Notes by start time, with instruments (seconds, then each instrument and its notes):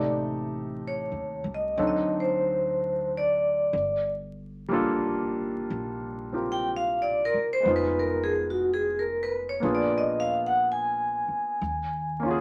Already playing: upright bass A1, grand piano C3 A3 D#4 G4 A4, vibraphone D5
0.88 vibraphone C#5
1.12 upright bass D#2
1.44 upright bass C2
1.54 vibraphone D#5
1.77 upright bass D2, grand piano F#3 C4 D4 D#4 A4
1.87 vibraphone D#5
2.20 vibraphone C5
3.17 vibraphone D5
3.73 upright bass G1
4.69 grand piano G3 A#3 D4 F4
4.73 grand piano A4
5.70 upright bass A#1
6.33 grand piano C4 F4 G4 A#4
6.52 vibraphone G5
6.76 vibraphone F5
7.02 vibraphone D5
7.25 vibraphone A#4
7.34 muted upright bass stroke
7.53 vibraphone C5
7.60 grand piano G#3 B3
7.65 upright bass F1, grand piano D#4 F4
7.70 grand piano G#4
7.76 vibraphone B4
7.99 vibraphone A#4
8.24 vibraphone G#4
8.50 vibraphone F#4
8.74 vibraphone G#4
8.99 vibraphone A#4
9.23 vibraphone B4
9.49 vibraphone C#5
9.60 upright bass A#1, grand piano A#3 B3 D4 F4
9.64 grand piano G#4
9.75 vibraphone D5
9.98 vibraphone D#5
10.20 vibraphone F5
10.46 vibraphone F#5
10.72 vibraphone G#5
11.28 muted upright bass stroke
11.61 upright bass D#2
12.20 grand piano A#3 C#4
12.25 grand piano F4 F#4
12.31 grand piano G#4